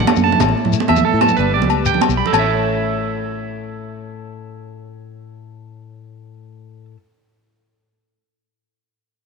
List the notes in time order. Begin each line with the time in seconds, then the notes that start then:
Already playing: D3 A3 F#4 A4
0.00 low conga
0.07 A2 D4, muted conga, high conga, low agogo
0.16 F#2, shekere
0.24 F#4 A5
0.32 low conga
0.40 A1 A2 E4, muted clean electric guitar stroke, muted conga, low agogo, shekere
0.49 high conga
0.58 C#4
0.65 A2, low conga
0.73 A3 E4, shekere
0.80 muted conga
0.88 E2 E5, muted nylon-string guitar stroke, high conga, low conga, low agogo
0.96 low conga, shekere
1.05 E3 A4
1.12 A2, low conga
1.21 F#3 A5, muted conga, high conga, low agogo
1.28 low conga, shekere
1.37 G1 G3 D4 G4 B4, muted nylon-string guitar stroke, shekere
1.54 G4 D5
1.61 C#2, muted conga, high conga, low conga, shekere
1.69 B4, muted nylon-string guitar stroke, low agogo, shekere
1.85 D2 G5, muted nylon-string guitar stroke, low conga, shekere
1.94 low conga
2.01 F#3, muted conga, high conga, low agogo
2.09 B1, shekere
2.17 G3 B5
2.26 A4, low conga
2.33 A1 A2 A3 C#5, muted conga, low agogo, shekere
2.37 C#4 E4 E5
2.41 C#5